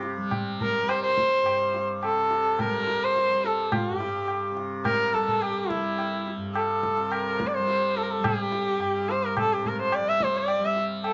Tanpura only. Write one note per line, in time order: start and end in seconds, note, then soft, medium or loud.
0.00 1.41 G2 medium
0.00 2.03 C3 medium
0.00 0.18 G3 medium
0.18 0.80 G3 medium
0.80 2.64 G3 medium
1.42 3.88 G2 medium
2.04 4.51 C3 medium
2.64 3.28 G3 medium
3.28 5.13 G3 medium
3.89 6.36 G2 medium
4.51 6.97 C3 medium
5.13 5.74 G3 medium
5.74 7.58 G3 medium
6.37 8.78 G2 medium
6.97 9.40 C3 medium
7.58 8.19 G3 medium
8.19 10.00 G3 medium
8.78 11.13 G2 medium
9.40 11.13 C3 soft
10.00 10.59 G3 medium
10.59 11.13 G3 medium